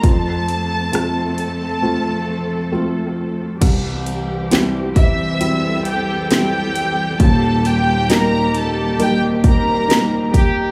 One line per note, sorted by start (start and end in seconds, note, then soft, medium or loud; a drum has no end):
0.03 3.58 F2 medium
0.03 3.58 F3 medium
0.03 3.58 A3 medium
0.03 3.58 C4 medium
0.03 3.58 A4 medium
0.03 1.38 A5 loud
0.03 kick medium
0.03 closed hi-hat medium
0.48 closed hi-hat medium
0.92 1.79 A3 soft
0.92 1.80 C4 soft
0.92 1.80 F4 medium
0.92 cross-stick loud
0.92 closed hi-hat medium
1.38 2.69 A5 medium
1.38 closed hi-hat medium
1.82 2.69 A3 soft
1.82 2.70 C4 soft
1.82 2.70 F4 medium
2.72 3.59 A3 medium
2.72 3.59 C4 soft
2.72 3.59 F4 medium
3.60 7.16 C2 medium
3.60 7.16 E3 medium
3.60 10.71 G3 medium
3.60 7.16 C4 medium
3.60 5.38 G4 medium
3.60 kick medium
3.60 closed hi-hat medium
3.60 crash medium
4.06 closed hi-hat medium
4.51 5.38 G3 soft
4.51 5.38 C4 soft
4.51 5.38 E4 medium
4.51 snare loud
4.51 closed hi-hat loud
4.96 5.82 E5 medium
4.96 5.82 E6 medium
4.96 kick medium
4.96 closed hi-hat medium
5.40 6.27 G3 medium
5.40 6.28 C4 medium
5.40 6.28 E4 medium
5.40 7.19 A4 medium
5.40 closed hi-hat medium
5.85 6.31 G4 medium
5.85 6.31 G5 medium
5.85 closed hi-hat medium
6.31 7.17 G3 medium
6.31 7.17 C4 soft
6.31 7.18 E4 medium
6.31 7.17 G4 medium
6.31 7.17 G5 medium
6.31 snare loud
6.31 closed hi-hat medium
6.76 closed hi-hat medium
7.20 10.71 D#1 medium
7.20 10.71 D#2 medium
7.20 10.71 D#3 medium
7.20 8.98 A#3 medium
7.20 10.71 G4 loud
7.20 7.66 A4 medium
7.20 7.66 A5 medium
7.20 kick loud
7.20 closed hi-hat medium
7.65 8.11 G4 medium
7.65 8.10 G5 loud
7.65 closed hi-hat medium
8.09 8.96 G3 medium
8.09 8.96 A#3 soft
8.09 8.97 D#4 medium
8.09 8.56 A#4 medium
8.09 8.55 A#5 loud
8.09 snare loud
8.09 closed hi-hat loud
8.55 9.01 A4 medium
8.55 9.00 A5 medium
8.55 closed hi-hat medium
8.99 9.86 G3 medium
8.99 9.86 A#3 soft
8.99 10.71 C4 medium
8.99 9.86 D#4 medium
8.99 9.22 G4 medium
8.99 9.21 G5 medium
8.99 closed hi-hat medium
9.44 10.31 A#4 medium
9.44 10.31 A#5 medium
9.44 kick medium
9.44 closed hi-hat medium
9.88 10.71 G3 medium
9.88 10.71 A#3 soft
9.88 10.71 D#4 medium
9.88 snare loud
9.88 closed hi-hat medium
10.32 10.71 G4 loud
10.32 kick medium
10.32 closed hi-hat medium